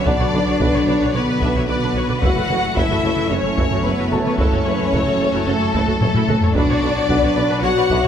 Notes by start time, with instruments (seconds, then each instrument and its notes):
Already playing: trombone section D3 F#3, analog synth pad D3 F#3 F#4 B4, grand piano B3 B4
0.06 tuba B1, double bass section B1, cello section D4, viola section D4 B4, french horn section D4, violin section D5, grand piano F#5, taiko
0.19 double bass section B1, viola section F#4 C#5
0.33 double bass section B1, tuba B1, viola section B4 D5, taiko mid
0.46 double bass section B1, viola section F#4 C#5
0.60 tuba B1, double bass section B1, viola section D4 B4, violin section B4, taiko
0.74 double bass section B1, viola section F#4 C#5, taiko mid
0.87 tuba B1, double bass section B1, viola section B4 D5, violin section C#5, taiko mid
1.01 double bass section B1, viola section D4 B4
1.13 tuba B1, double bass section B1, french horn section B3, cello section B3, viola section F#4 C#5, violin section B4 D5
1.27 double bass section B1, viola section B4 D5
1.40 tuba B1, double bass section B1, viola section D4 B4, violin section E5, taiko
1.54 double bass section B1, viola section F#4 C#5, taiko mid
1.67 tuba B1, double bass section B1, french horn section B3, cello section B3, violin section B4 D5, viola section B4 D5
1.81 double bass section B1, viola section D4 B4
1.94 double bass section B1, tuba B1, viola section F#4 C#5, violin section B4
2.09 double bass section B1, viola section B4 D5, taiko mid
2.21 double bass section F#1, tuba F#1, trombone section E3 A3, analog synth pad F#3 C#4 E4 A4, viola section E4 F#4, french horn section F#4, cello section F#4, violin section F#5, taiko
2.35 double bass section F#1, viola section F#4 A4
2.49 tuba F#1, double bass section F#1, viola section A4 C#5, taiko mid
2.63 double bass section F#1, viola section F#4 A4
2.76 tuba F#1, double bass section F#1, french horn section E4, viola section E4 F#4, cello section E4, violin section A4 E5, grand piano B5, taiko
2.89 double bass section F#1, viola section F#4 A4, taiko mid
3.03 tuba F#1, double bass section F#1, viola section A4 C#5, taiko mid
3.16 double bass section F#1, viola section E4 F#4
3.30 tuba F#1, double bass section F#1, french horn section C#4, cello section C#4, viola section F#4 A4, violin section C#5
3.43 double bass section F#1, viola section A4 C#5
3.57 double bass section F#1, tuba F#1, viola section E4 F#4, taiko
3.71 double bass section F#1, viola section F#4 A4, taiko mid
3.84 double bass section F#1, tuba F#1, french horn section B3, cello section B3, viola section A4 C#5, violin section B4
3.98 double bass section F#1, viola section E4 F#4
4.11 double bass section F#1, tuba F#1, viola section F#4 A4, grand piano A4 A5
4.25 double bass section F#1, cello section B3, french horn section B3, viola section A4 C#5, violin section B4, taiko mid
4.38 double bass section F#1, tuba F#1, french horn section C#4, cello section C#4, viola section E4 F#4, violin section A4 C#5, taiko
4.51 double bass section F#1, viola section F#4 A4
4.65 double bass section F#1, tuba F#1, viola section A4 C#5, violin section B4
4.79 double bass section F#1, viola section F#4 A4
4.93 double bass section F#1, tuba F#1, viola section E4 F#4, violin section A4, taiko
5.06 double bass section F#1, viola section F#4 A4
5.20 double bass section F#1, tuba F#1, viola section A4 C#5
5.33 double bass section F#1, viola section E4 F#4
5.46 double bass section F#1, tuba F#1, cello section A3, french horn section A3, viola section F#4 A4, violin section A4
5.59 double bass section F#1, viola section A4 C#5
5.73 double bass section F#1, tuba F#1, viola section E4 F#4, taiko
5.86 double bass section F#1, viola section F#4 A4
6.00 double bass section F#1, tuba F#1, cello section A3, french horn section A3, violin section A4, viola section A4 C#5, taiko low-mid
6.14 double bass section F#1, viola section E4 F#4, taiko low-mid
6.28 tuba F#1, double bass section F#1, viola section F#4 A4, taiko low-mid
6.42 double bass section F#1, viola section A4 C#5, taiko low
6.54 double bass section B1, tuba B1, trombone section F#3 B3, analog synth pad F#3 D4 F#4 B4, cello section D4, viola section D4 B4, french horn section D4, violin section F#4 D5, taiko
6.69 double bass section B1, viola section F#4 C#5
6.82 double bass section B1, tuba B1, viola section B4 D5
6.96 double bass section B1, viola section F#4 C#5
7.09 tuba B1, double bass section B1, viola section D4 B4, violin section B4, grand piano F#5, taiko
7.23 double bass section B1, viola section F#4 C#5
7.36 tuba B1, double bass section B1, viola section B4 D5
7.49 double bass section B1, viola section D4 B4
7.63 double bass section B1, tuba B1, cello section F#4, viola section F#4 C#5, french horn section F#4, violin section C#5 F#5
7.76 double bass section B1, viola section B4 D5
7.89 tuba B1, double bass section B1, viola section D4 B4, grand piano E5, taiko
8.03 double bass section B1, viola section F#4 C#5